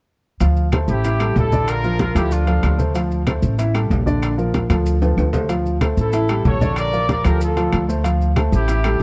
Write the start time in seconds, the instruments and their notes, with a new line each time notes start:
0.40 upright bass D2, grand piano F3 F4 F5, high conga, high timbale, maracas
0.56 high conga, maracas
0.72 grand piano A3 A4 C5, high conga, high timbale, claves, maracas
0.88 upright bass A1, trumpet section E4 G4, high conga, maracas
1.04 grand piano E3 E4 E5, high conga, high timbale, maracas
1.20 grand piano G3 G4 A4, high conga, high timbale, claves, maracas
1.36 upright bass A#1, trumpet section E4 A4, high conga, low timbale, maracas
1.52 grand piano D3 D4 D5, high conga, maracas
1.68 trumpet section F4 A#4, high conga, high timbale, claves, maracas
1.84 grand piano F3 F4 A#4, high conga, maracas
1.99 trumpet section F4 A#4, high conga, high timbale, maracas
2.15 upright bass D2, grand piano F3 F4 A4, trumpet section E4 G4, high conga, high timbale, claves, maracas
2.31 trumpet section D4 F4, high conga, maracas
2.47 grand piano F3 F4 A4, high conga, high timbale, maracas
2.63 upright bass D2, high conga, high timbale, low timbale, claves, maracas
2.78 grand piano A3 A4 C5, high conga, maracas
2.95 grand piano F3 F4 F5, high conga, high timbale, maracas
3.11 high conga, maracas
3.27 grand piano A3 A4 C5, high conga, high timbale, claves, maracas
3.42 upright bass A1, high conga, maracas
3.58 grand piano E3 E4 E5, high conga, high timbale, maracas
3.74 grand piano G3 G4 A4, high conga, high timbale, claves, maracas
3.90 upright bass A#1, high conga, low timbale, maracas
4.06 grand piano D3 D4 D5, high conga, maracas
4.22 high conga, high timbale, claves, maracas
4.38 grand piano F3 F4 A#4, high conga, maracas
4.54 high conga, high timbale, maracas
4.70 upright bass D2, grand piano F3 F4 A4, high conga, high timbale, claves, maracas
4.86 high conga, maracas
5.02 grand piano F3 F4 A4, high conga, high timbale, maracas
5.17 upright bass D2, high conga, high timbale, claves, maracas
5.33 grand piano A3 A4 C5, high conga, low timbale, maracas
5.49 grand piano F3 F4 F5, high conga, high timbale, maracas
5.66 high conga, maracas
5.81 grand piano A3 A4 C5, high conga, high timbale, claves, maracas
5.97 upright bass A1, trumpet section E4 A4, high conga, maracas
6.13 grand piano E3 E4 E5, high conga, high timbale, maracas
6.29 grand piano G3 G4 A4, high conga, high timbale, claves, maracas
6.45 upright bass A#1, trumpet section A4 C#5, high conga, low timbale, maracas
6.61 grand piano D3 D4 D5, high conga, maracas
6.76 trumpet section A#4 D5, high conga, high timbale, claves, maracas
6.93 grand piano F3 F4 A#4, high conga, maracas
7.09 trumpet section A#4 D5, high conga, high timbale, maracas
7.25 upright bass D2, grand piano F3 F4 A4, trumpet section G4 A#4, high conga, high timbale, claves, maracas
7.41 trumpet section F4 A4, high conga, maracas
7.57 grand piano F3 F4 A4, high conga, high timbale, maracas
7.72 upright bass D2, high conga, high timbale, claves, maracas
7.89 grand piano A3 A4 C5, maracas
8.04 grand piano F3 F4 F5, high conga, high timbale, maracas
8.21 high conga, maracas
8.36 grand piano A3 A4 C5, high conga, high timbale, claves, maracas
8.52 upright bass A1, trumpet section E4 G4, high conga, maracas
8.68 grand piano E3 E4 E5, high conga, high timbale, maracas
8.84 grand piano G3 G4 A4, high conga, high timbale, claves, maracas